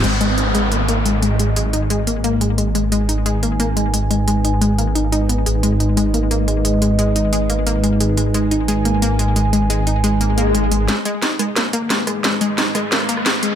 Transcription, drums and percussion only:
0.04 closed hi-hat medium
0.04 crash medium
0.21 closed hi-hat medium
0.38 closed hi-hat medium
0.55 closed hi-hat medium
0.72 closed hi-hat medium
0.89 closed hi-hat medium
1.06 closed hi-hat medium
1.22 closed hi-hat medium
1.39 closed hi-hat medium
1.56 closed hi-hat medium
1.73 closed hi-hat medium
1.90 closed hi-hat medium
2.07 closed hi-hat medium
2.24 closed hi-hat medium
2.41 closed hi-hat medium
2.58 closed hi-hat medium
2.75 closed hi-hat medium
2.92 closed hi-hat medium
3.09 closed hi-hat medium
3.26 closed hi-hat medium
3.43 closed hi-hat medium
3.60 closed hi-hat medium
3.77 closed hi-hat medium
3.94 closed hi-hat medium
4.11 closed hi-hat medium
4.28 closed hi-hat medium
4.45 closed hi-hat medium
4.62 closed hi-hat medium
4.78 closed hi-hat medium
4.95 closed hi-hat medium
5.12 closed hi-hat medium
5.29 closed hi-hat medium
5.46 closed hi-hat medium
5.63 closed hi-hat medium
5.80 closed hi-hat medium
5.97 closed hi-hat medium
6.14 closed hi-hat medium
6.31 closed hi-hat medium
6.48 closed hi-hat medium
6.65 closed hi-hat medium
6.82 closed hi-hat medium
6.99 closed hi-hat medium
7.16 closed hi-hat medium
7.33 closed hi-hat medium
7.50 closed hi-hat medium
7.67 closed hi-hat medium
7.84 closed hi-hat medium
8.00 closed hi-hat medium
8.17 closed hi-hat medium
8.34 closed hi-hat medium
8.51 closed hi-hat medium
8.68 closed hi-hat medium
8.85 closed hi-hat medium
9.02 closed hi-hat medium
9.19 closed hi-hat medium
9.36 closed hi-hat medium
9.53 closed hi-hat medium
9.70 closed hi-hat loud
9.87 closed hi-hat medium
10.04 closed hi-hat medium
10.21 closed hi-hat medium
10.38 closed hi-hat medium
10.55 closed hi-hat medium
10.72 closed hi-hat medium
10.88 snare soft
10.88 closed hi-hat medium
11.05 closed hi-hat medium
11.22 snare soft
11.22 closed hi-hat medium
11.39 cross-stick soft
11.39 closed hi-hat loud
11.56 cross-stick soft
11.56 snare medium
11.56 closed hi-hat medium
11.73 closed hi-hat loud
11.90 snare medium
11.90 closed hi-hat medium
12.07 cross-stick soft
12.07 closed hi-hat loud
12.24 snare medium
12.24 closed hi-hat medium
12.41 closed hi-hat loud
12.58 snare medium
12.58 closed hi-hat medium
12.75 cross-stick soft
12.75 closed hi-hat medium
12.92 snare medium
12.92 closed hi-hat medium
13.00 cross-stick soft
13.09 closed hi-hat medium
13.17 cross-stick soft
13.26 snare medium
13.26 closed hi-hat medium
13.43 closed hi-hat medium

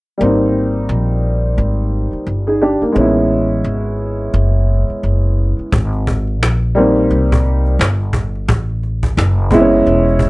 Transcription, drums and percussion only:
5.72 cajon bass loud
5.93 cajon slap soft
6.07 cajon bass medium
6.27 cajon slap soft
6.43 cajon slap loud
6.63 cajon slap soft
6.76 cajon slap soft
6.96 cajon slap soft
7.11 cajon slap soft
7.32 cajon bass medium
7.45 cajon slap soft
7.65 cajon slap soft
7.81 cajon slap loud
8.00 cajon slap soft
8.13 cajon bass medium
8.35 cajon slap soft
8.49 cajon bass loud
8.69 cajon slap soft
8.83 cajon slap soft
9.03 cajon bass medium
9.18 cajon slap loud
9.39 cajon slap soft
9.51 cajon bass medium
9.71 cajon slap soft
9.86 cajon slap soft
10.06 cajon slap soft
10.08 cajon slap soft
10.19 cajon bass medium

